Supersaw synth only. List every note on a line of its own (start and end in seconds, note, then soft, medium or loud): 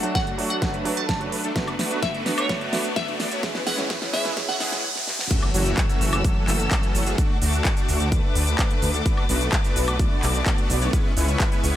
0.00 0.24 A3 medium
0.00 0.24 D4 medium
0.00 0.24 F#4 medium
0.27 0.59 A3 medium
0.27 0.59 D4 medium
0.27 0.59 F#4 medium
0.62 1.06 A3 medium
0.62 1.06 D4 medium
0.62 1.06 B4 medium
1.09 1.41 A3 medium
1.09 1.41 D4 medium
1.09 1.41 B4 medium
1.44 1.54 A3 medium
1.44 1.54 D4 medium
1.44 1.54 A4 loud
1.56 1.75 A3 medium
1.56 1.75 B3 medium
1.56 1.75 D4 medium
1.56 1.75 F#4 medium
1.56 1.75 B4 loud
1.79 2.11 A3 medium
1.79 2.11 B3 medium
1.79 2.11 D4 medium
1.79 2.11 F#4 medium
1.79 2.11 B4 medium
2.14 2.47 A3 medium
2.14 2.47 B3 medium
2.14 2.47 D4 medium
2.14 2.47 F#4 medium
2.14 2.47 B4 medium
2.49 2.94 A3 medium
2.49 2.94 B3 medium
2.49 2.94 D4 medium
2.49 2.94 F#4 medium
2.49 2.94 D5 medium
2.96 3.29 A3 medium
2.96 3.29 B3 medium
2.96 3.29 D4 medium
2.96 3.29 F#4 medium
2.96 3.29 D5 medium
3.32 3.41 A3 medium
3.32 3.41 B3 medium
3.32 3.41 D4 medium
3.32 3.41 F#4 medium
3.32 3.41 C#5 loud
3.43 3.62 G#3 medium
3.43 3.62 B3 medium
3.43 3.62 C#4 medium
3.43 3.62 E4 medium
3.43 3.62 B4 medium
3.67 3.99 G#3 medium
3.67 3.99 B3 medium
3.67 3.99 C#4 medium
3.67 3.99 E4 medium
3.67 3.99 B4 medium
4.02 4.34 G#3 medium
4.02 4.34 B3 medium
4.02 4.34 C#4 medium
4.02 4.34 E4 medium
4.02 4.34 B4 medium
4.37 4.58 G#3 medium
4.37 4.58 B3 medium
4.37 4.58 C#4 medium
4.37 4.58 E4 medium
4.37 4.58 E5 medium
4.61 4.84 G#3 medium
4.61 4.84 B3 medium
4.61 4.84 C#4 medium
4.61 4.84 E4 medium
4.61 4.84 G#4 medium
5.31 5.50 E3 medium
5.31 5.50 F#3 medium
5.31 5.50 A3 medium
5.31 5.50 C#4 medium
5.31 5.50 F#4 loud
5.54 5.87 E3 medium
5.54 5.87 F#3 medium
5.54 5.87 A3 medium
5.54 5.87 C#4 medium
5.54 5.87 F#4 medium
5.89 6.22 E3 medium
5.89 6.22 F#3 medium
5.89 6.22 A3 medium
5.89 6.22 C#4 medium
5.89 6.22 F#4 medium
6.24 6.69 E3 medium
6.24 6.69 F#3 medium
6.24 6.69 A3 medium
6.24 6.69 C#4 medium
6.24 6.69 A4 medium
6.71 7.04 E3 medium
6.71 7.04 F#3 medium
6.71 7.04 A3 medium
6.71 7.04 C#4 medium
6.71 7.04 A4 medium
7.07 7.16 E3 medium
7.07 7.16 F#3 medium
7.07 7.16 A3 medium
7.07 7.16 C#4 medium
7.07 7.16 G#4 loud
7.18 7.37 A3 medium
7.18 7.37 D4 medium
7.18 7.37 F#4 loud
7.42 7.74 A3 medium
7.42 7.74 D4 medium
7.42 7.74 F#4 medium
7.77 8.09 A3 medium
7.77 8.09 D4 medium
7.77 8.09 F#4 medium
8.12 8.56 A3 medium
8.12 8.56 D4 medium
8.12 8.56 B4 medium
8.59 8.91 A3 medium
8.59 8.91 D4 medium
8.59 8.91 B4 medium
8.94 9.04 A3 medium
8.94 9.04 D4 medium
8.94 9.04 A4 loud
9.06 9.25 A3 medium
9.06 9.25 B3 medium
9.06 9.25 D4 medium
9.06 9.25 F#4 medium
9.06 9.25 B4 loud
9.29 9.61 A3 medium
9.29 9.61 B3 medium
9.29 9.61 D4 medium
9.29 9.62 F#4 medium
9.29 9.61 B4 medium
9.64 9.97 A3 medium
9.64 9.97 B3 medium
9.64 9.97 D4 medium
9.64 9.97 F#4 medium
9.64 9.97 B4 medium
9.99 10.44 A3 medium
9.99 10.44 B3 medium
9.99 10.44 D4 medium
9.99 10.44 F#4 medium
9.99 10.44 D5 medium
10.46 10.79 A3 medium
10.46 10.79 B3 medium
10.46 10.79 D4 medium
10.46 10.79 F#4 medium
10.46 10.79 D5 medium
10.81 10.91 A3 medium
10.81 10.91 B3 medium
10.81 10.91 D4 medium
10.81 10.91 F#4 medium
10.81 10.91 C#5 loud
10.93 11.12 G#3 medium
10.93 11.12 B3 medium
10.93 11.12 C#4 medium
10.93 11.12 E4 medium
10.93 11.12 B4 loud
11.17 11.49 G#3 medium
11.17 11.49 B3 medium
11.17 11.49 C#4 medium
11.17 11.49 E4 medium
11.17 11.49 B4 medium
11.52 11.76 G#3 medium
11.52 11.76 B3 medium
11.52 11.76 C#4 medium
11.52 11.76 E4 medium
11.52 11.76 B4 medium